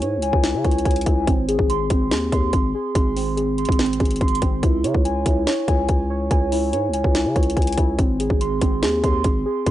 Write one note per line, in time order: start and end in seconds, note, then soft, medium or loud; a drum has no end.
0.00 0.19 G#2 loud
0.00 0.42 E4 medium
0.00 0.63 C#5 medium
0.00 0.21 G#5 medium
0.00 closed hi-hat medium
0.17 0.32 C#2 loud
0.22 0.85 G#5 medium
0.22 closed hi-hat medium
0.33 0.55 C#2 loud
0.33 kick loud
0.43 1.05 E4 medium
0.43 snare loud
0.43 closed hi-hat medium
0.54 0.64 C#3 loud
0.64 0.85 C#2 loud
0.64 1.27 C#5 medium
0.64 kick medium
0.64 closed hi-hat soft
0.71 closed hi-hat medium
0.78 closed hi-hat medium
0.85 1.06 C#2 loud
0.85 1.28 G#5 medium
0.85 kick loud
0.85 closed hi-hat soft
0.91 closed hi-hat medium
0.96 closed hi-hat medium
1.01 closed hi-hat medium
1.06 1.27 C#2 loud
1.06 1.27 E4 medium
1.06 kick medium
1.06 closed hi-hat medium
1.27 1.58 G#1 loud
1.27 1.89 C4 loud
1.27 kick loud
1.27 closed hi-hat medium
1.48 2.10 G#4 medium
1.48 closed hi-hat medium
1.59 1.89 G#1 loud
1.59 kick medium
1.69 2.31 C6 medium
1.69 closed hi-hat medium
1.90 2.13 G#1 loud
1.90 3.15 C4 medium
1.90 kick loud
1.90 closed hi-hat loud
2.11 2.31 D#2 medium
2.11 2.73 G#4 medium
2.11 snare loud
2.11 closed hi-hat medium
2.32 2.52 D#2 loud
2.32 2.94 C6 medium
2.32 kick medium
2.32 closed hi-hat medium
2.53 2.73 G#1 loud
2.53 kick loud
2.53 closed hi-hat medium
2.75 3.35 G#4 medium
2.95 3.66 G#1 loud
2.95 3.57 C6 medium
2.95 kick loud
2.95 closed hi-hat medium
3.16 3.78 C4 medium
3.16 open hi-hat medium
3.37 3.99 G#4 medium
3.37 closed hi-hat medium
3.58 4.20 C6 medium
3.58 closed hi-hat medium
3.65 3.99 G#1 loud
3.65 kick loud
3.65 closed hi-hat medium
3.72 closed hi-hat medium
3.79 4.41 C4 medium
3.79 snare loud
3.79 closed hi-hat medium
3.86 closed hi-hat medium
3.93 closed hi-hat medium
4.00 4.20 G#1 loud
4.00 4.63 G#4 medium
4.00 kick medium
4.00 closed hi-hat soft
4.05 closed hi-hat medium
4.11 closed hi-hat medium
4.16 closed hi-hat medium
4.21 4.41 G#1 loud
4.21 4.63 C6 medium
4.21 kick loud
4.21 closed hi-hat soft
4.28 closed hi-hat medium
4.35 closed hi-hat medium
4.42 4.62 G#1 loud
4.42 4.63 C4 loud
4.42 kick medium
4.42 closed hi-hat medium
4.63 4.86 C#2 loud
4.63 5.25 E4 medium
4.63 kick loud
4.63 closed hi-hat medium
4.84 4.94 C#3 loud
4.84 5.46 C#5 medium
4.84 closed hi-hat medium
4.94 5.25 C#2 loud
4.94 kick medium
5.05 5.67 G#5 medium
5.05 closed hi-hat medium
5.26 5.46 C#2 loud
5.26 6.51 E4 medium
5.26 kick medium
5.26 closed hi-hat loud
5.47 6.09 C#5 medium
5.47 snare loud
5.47 closed hi-hat medium
5.68 5.88 C#2 loud
5.68 6.30 G#5 medium
5.68 kick loud
5.68 closed hi-hat medium
5.89 6.29 C#2 loud
5.89 kick loud
5.89 closed hi-hat medium
6.10 6.72 C#5 medium
6.31 6.74 C#2 loud
6.31 6.93 G#5 medium
6.31 kick loud
6.31 closed hi-hat medium
6.52 7.13 E4 medium
6.52 open hi-hat medium
6.73 6.90 G#2 loud
6.73 7.34 C#5 medium
6.73 closed hi-hat medium
6.89 7.03 C#2 loud
6.93 7.56 G#5 medium
6.93 closed hi-hat medium
7.04 7.27 C#2 loud
7.04 kick medium
7.15 7.77 E4 medium
7.15 snare loud
7.15 closed hi-hat medium
7.25 7.35 C#3 loud
7.36 7.56 C#2 loud
7.36 7.99 C#5 medium
7.36 kick loud
7.36 closed hi-hat soft
7.43 closed hi-hat medium
7.50 closed hi-hat medium
7.57 7.77 C#2 loud
7.57 7.99 G#5 medium
7.57 kick medium
7.57 closed hi-hat medium
7.62 closed hi-hat medium
7.67 closed hi-hat medium
7.72 closed hi-hat medium
7.78 7.98 C#2 loud
7.78 7.99 E4 medium
7.78 kick medium
7.78 closed hi-hat medium
7.99 8.29 G#1 loud
7.99 8.61 C4 medium
7.99 kick loud
7.99 closed hi-hat medium
8.20 8.81 G#4 medium
8.20 closed hi-hat medium
8.30 8.60 G#1 loud
8.30 kick medium
8.41 9.02 C6 medium
8.41 closed hi-hat medium
8.61 8.84 G#1 loud
8.61 9.71 C4 loud
8.61 kick loud
8.61 closed hi-hat medium
8.83 9.03 D#2 loud
8.83 9.44 G#4 medium
8.83 snare loud
8.83 closed hi-hat medium
9.04 9.24 D#2 loud
9.04 9.65 C6 medium
9.04 kick medium
9.04 closed hi-hat medium
9.24 9.45 G#1 loud
9.24 kick loud
9.24 closed hi-hat medium
9.46 9.71 G#4 medium
9.66 9.71 G#1 loud
9.66 9.71 C6 medium
9.66 kick loud
9.66 closed hi-hat medium